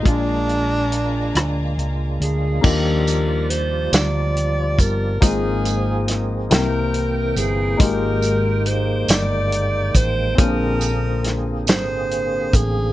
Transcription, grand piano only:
<<
  \new Staff \with { instrumentName = "Grand piano" } { \time 6/8 \key ees \major \tempo 4. = 46 <aes bes d' f' aes'>2. | <bes d' ees' f' g'>2. | <bes c' ees' f' aes'>4. <bes c' e' bes' g''>4. | <bes ees' f' g' aes'>2. |
<c' des' d' f' aes' bes'>2. | }
  \new Staff \with { instrumentName = "Grand piano" } { \clef bass \time 6/8 \key ees \major bes,4. r4. | ees4. r4. | aes,4. c4. | aes,4. r4. |
bes,4. r4. | }
>>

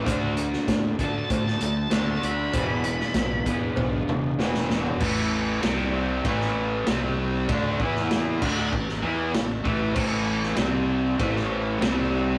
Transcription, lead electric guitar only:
\new Staff \with { instrumentName = "Lead electric guitar" } { \time 4/4 \key e \minor \tempo 4 = 97 r4. a''16 a''16 a''16 a''16 a''16 a''16 a''16 a''16 b''8~ | b''2~ b''8 r4. | \key a \minor r1 | r1 |
r1 | }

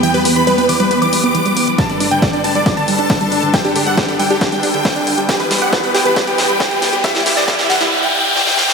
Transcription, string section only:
\new Staff \with { instrumentName = "String section" } { \time 4/4 \key e \minor \tempo 4 = 137 <e, e b g' b'>1 | <g, g d' a'>1~ | <g, g d' a'>1 | <e, e b g' b'>1~ |
<e, e b g' b'>2 r2 | }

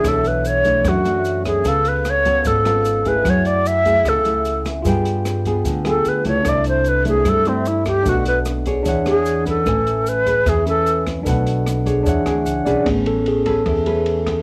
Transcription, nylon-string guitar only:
\new Staff \with { instrumentName = "Nylon-string guitar" } { \time 4/4 \key a \major \tempo 4 = 150 << { <e a d'>4. <e a d'>4 <e a d'>4. | <b eis' a'>4 r8 <b eis' a'>4 <b eis' a'>4 <a e' gis'>8~ | <a e' gis'>4. <a e' gis'>4 <a e'>4. | <b f' aes'>4 r8 <b f' aes'>4 <b f' aes'>4 <a d' e'>8~ |
<a d' e'>4. <a d' e'>4 <a d' e'>4. | <a d' fis'>4 r8 <d' gis' cis''>4 <d' gis' cis''>4 <cis' b'>8~ | <cis' b'>4. <cis' gis' b'>4 <cis' b'>4. | <a d' fis'>4 r8 <d' gis' cis''>4 <d' gis' cis''>4 <cis' gis' b'>8~ |
<cis' gis' b'>4 r8 <cis' gis' b'>4 <cis' gis' b'>4. | } \\ { b,2 fis,2 | cis2 gis,2 | fis2 cis2 | g2 d2 |
c2 g2 | b,2 e2 | a2 e2 | b,2 e2 |
a2 e2 | } >> }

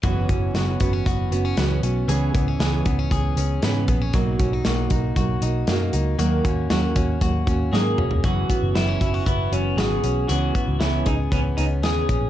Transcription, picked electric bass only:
\new Staff \with { instrumentName = "Picked electric bass" } { \clef bass \time 4/4 \key fis \mixolydian \tempo 4 = 117 fis,,8 fis,,8 fis,,8 fis,,8 fis,,8 fis,,8 cis,8 b,,8 | cis,8 cis,8 cis,8 cis,8 cis,8 cis,8 gis,8 ais,,8 | b,,8 b,,8 b,,8 b,,8 b,,8 b,,8 fis,8 cis,8 | dis,8 dis,8 dis,8 dis,8 dis,8 dis,8 gis,8 e,,8 |
fis,,8 r16 fis,,16 fis,,8 fis,,8 fis,,8 fis,,8 gis,,8 b,,8 | cis,8 r16 cis,16 cis,8 cis,8 cis,8 cis,8 dis,8 ais,,8 | }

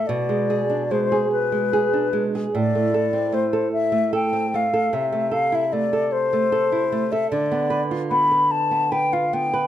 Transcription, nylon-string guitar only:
\new Staff \with { instrumentName = "Nylon-string guitar" } { \time 6/8 \key a \minor \tempo 4. = 50 b,16 gis16 gis'16 d'16 gis16 gis'8 gis16 gis'16 d'16 gis16 gis'16 | a,16 a16 a'16 c'16 a16 a'8 a16 a'16 c'16 a16 a'16 | c16 a16 a'16 e'16 a16 a'8 a16 a'16 e'16 a16 a'16 | d16 b16 b'16 f'16 b16 b'8 b16 b'16 f'16 b16 b'16 | }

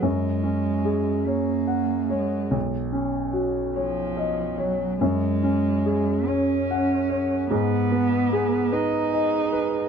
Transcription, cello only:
\new Staff \with { instrumentName = "Cello" } { \clef bass \time 6/8 \key fis \major \tempo 4. = 49 gis4. ais4 gis8 | r4. eis4 fis8 | gis4. cis'4. | b4. dis'4. | }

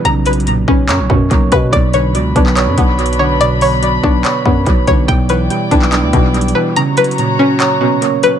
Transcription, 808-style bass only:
\new Staff \with { instrumentName = "808-style bass" } { \clef bass \time 4/4 \key b \minor \tempo 4 = 143 b,,4. b,,8 fis,16 b,,16 fis,8 b,,8 b,8 | b,,4 cis,8 b,,8. fis,16 b,,4.~ | b,,4. b,,8 r8 fis,8 b,,8 b,,8 | b,,4 r8 b,,8. d,16 b,,4 r8 |
r1 | }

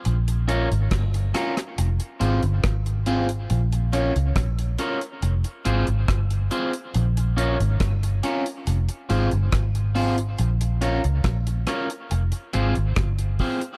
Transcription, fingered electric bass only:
\new Staff \with { instrumentName = "Fingered electric bass" } { \clef bass \time 4/4 \key bes \dorian \tempo 4 = 70 bes,,8. aes,,16 g,,8 r8 f,,16 r16 aes,,16 g,,16 aes,,4 | bes,,8. des,16 bes,,8 r8 f,,16 r16 aes,,16 aes,,16 g,,8 r8 | bes,,8. aes,,16 g,,8 r8 f,,16 r16 aes,,16 g,,16 aes,,4 | bes,,8. des,16 bes,,8 r8 f,,16 r16 aes,,16 aes,,16 g,,8 r8 | }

